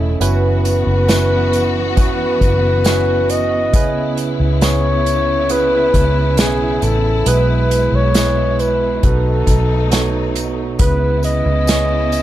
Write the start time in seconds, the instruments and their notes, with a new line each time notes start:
Already playing: fingered electric bass E1, string section C#3 A3 E4, tine electric piano A3 C#4 E4 A4 C#5 D#5
0.20 fingered electric bass F#1, string section E3 B3 F#4, tine electric piano B3 C#4 E4 F#4 B4, flugelhorn B4, closed hi-hat, tambourine
0.65 closed hi-hat, tambourine
0.87 fingered electric bass F#1
1.08 tine electric piano B3 C#4 E4 F#4 B4, snare, closed hi-hat, tambourine
1.53 closed hi-hat, tambourine
1.96 tine electric piano B3 C#4 E4 F#4 B4, flugelhorn B4, kick, closed hi-hat, tambourine
2.41 fingered electric bass F#1, kick, closed hi-hat, tambourine
2.84 tine electric piano B3 C#4 E4 F#4 B4, snare, closed hi-hat, tambourine
3.29 flugelhorn D#5, closed hi-hat, tambourine
3.72 fingered electric bass C#2, string section C#3 B3 E4, tine electric piano C#3 B3 C#4 E4 G#4 B4, kick, closed hi-hat, tambourine
4.17 closed hi-hat, tambourine
4.40 fingered electric bass C#2
4.61 tine electric piano B3 C#4 E4 G#4 C#5, flugelhorn C#5, snare, closed hi-hat, tambourine
5.06 closed hi-hat, tambourine
5.49 tine electric piano B3 C#4 E4 G#4 B4, flugelhorn B4, closed hi-hat, tambourine
5.94 fingered electric bass C#2, kick, closed hi-hat, tambourine
6.37 fingered electric bass B1, tine electric piano B3 C#4 E4 B4, flugelhorn G#4, snare, closed hi-hat, tambourine
6.82 fingered electric bass A1, flugelhorn A4, closed hi-hat, tambourine
7.25 fingered electric bass B1, string section B2 G#3, tine electric piano B2 G#3 B3 E4 G#4 B4, flugelhorn B4, closed hi-hat, tambourine
7.71 closed hi-hat, tambourine
7.92 fingered electric bass B1, flugelhorn C#5
8.14 tine electric piano G#3 B3 E4 G#4 B4, snare, closed hi-hat, tambourine
8.59 flugelhorn B4, closed hi-hat, tambourine
9.03 fingered electric bass B1, tine electric piano B2 B3 C#4 F#4 A4 B4, string section A3 D#4, flugelhorn A4, kick, closed hi-hat
9.10 tine electric piano D#4
9.47 fingered electric bass B1, kick, closed hi-hat, tambourine
9.91 tine electric piano B3 D#4 F#4 A4 C#5, snare, closed hi-hat, tambourine
10.36 closed hi-hat, tambourine
10.79 fingered electric bass C#2, string section C#3 B3 E4, tine electric piano C#3 B3 C#4 E4 G#4 B4, flugelhorn B4, kick, closed hi-hat, tambourine
11.23 flugelhorn D#5, closed hi-hat, tambourine
11.46 fingered electric bass C#2
11.67 tine electric piano B3 C#4 E4 G#4 C#5, snare, closed hi-hat, tambourine
12.12 closed hi-hat, tambourine